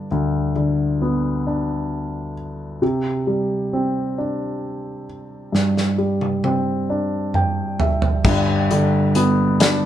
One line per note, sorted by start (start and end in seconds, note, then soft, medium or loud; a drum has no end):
0.00 1.02 B3 soft
0.00 0.51 D4 soft
0.11 2.78 D2 soft
0.56 2.33 D3 soft
1.02 2.78 B3 soft
1.47 2.78 D4 soft
2.82 5.49 C3 medium
3.27 5.04 G3 soft
3.73 5.50 C4 soft
4.18 5.95 D4 soft
5.52 8.20 G2 soft
5.52 snare soft
5.77 snare soft
5.98 7.75 G3 soft
6.21 high tom soft
6.44 8.21 C4 soft
6.44 high tom medium
6.90 8.21 D4 soft
7.34 7.77 G5 soft
7.34 mid tom medium
7.80 8.22 E5 soft
7.80 floor tom medium
8.02 floor tom medium
8.25 9.86 G1 medium
8.25 9.86 G2 medium
8.25 kick loud
8.25 crash medium
8.71 9.86 D3 medium
8.71 closed hi-hat soft
9.15 9.86 B3 medium
9.15 closed hi-hat medium
9.60 9.86 D4 medium
9.60 snare loud
9.60 closed hi-hat medium